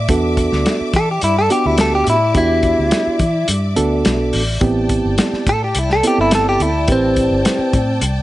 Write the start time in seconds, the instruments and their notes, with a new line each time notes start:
Already playing: string section D5 E5 D6
0.09 fingered electric bass E2, reed electric piano B3 D4 F#4 A4, kick, closed hi-hat
0.37 kick, closed hi-hat
0.52 fingered electric bass D2, snare
0.66 snare, closed hi-hat
0.81 muted fingered electric bass stroke
0.93 fingered electric bass E3, clean electric guitar A4, kick, closed hi-hat
1.11 clean electric guitar G4
1.21 fingered electric bass G2, clean electric guitar E4, closed hi-hat
1.39 clean electric guitar A4
1.50 reed electric piano B3 D4 F#4 G4, clean electric guitar G4, closed hi-hat
1.66 fingered electric bass D2, clean electric guitar E4
1.78 clean electric guitar A4, snare, closed hi-hat
1.95 clean electric guitar G4
2.07 fingered electric bass A2, clean electric guitar E4, closed hi-hat
2.34 fingered electric bass E2, reed electric piano B3 D4 F#4 G4, clean electric guitar E4, kick, closed hi-hat
2.63 kick, closed hi-hat
2.79 fingered electric bass D2
2.91 snare, closed hi-hat
3.07 muted fingered electric bass stroke
3.19 fingered electric bass E3, kick, closed hi-hat
3.48 fingered electric bass G2, closed hi-hat
3.76 fingered electric bass D2, reed electric piano B3 D4 F#4 A4, closed hi-hat
4.05 fingered electric bass B1, snare, closed hi-hat
4.33 fingered electric bass A1, open hi-hat
4.61 fingered electric bass A1, reed electric piano B3 C4 E4 G4, string section G5 A5, kick, closed hi-hat
4.89 kick, closed hi-hat
5.05 fingered electric bass G1
5.18 snare, closed hi-hat
5.33 muted fingered electric bass stroke, snare
5.47 fingered electric bass A2, clean electric guitar A4, kick, closed hi-hat
5.64 clean electric guitar G4
5.75 fingered electric bass C2, closed hi-hat
5.79 clean electric guitar E4
5.90 clean electric guitar A4, snare
6.03 reed electric piano B3 C4 E4 A4, closed hi-hat
6.07 clean electric guitar G4
6.18 fingered electric bass G1, clean electric guitar E4
6.31 clean electric guitar A4, snare, closed hi-hat
6.49 clean electric guitar G4
6.60 fingered electric bass D2, clean electric guitar E4, closed hi-hat
6.88 fingered electric bass A1, reed electric piano C4 E4 G4 B4, kick, closed hi-hat
6.92 clean electric guitar C4
7.16 kick, closed hi-hat
7.31 fingered electric bass G1
7.45 snare, closed hi-hat
7.59 muted fingered electric bass stroke
7.73 fingered electric bass A2, kick, closed hi-hat
8.01 fingered electric bass C2, closed hi-hat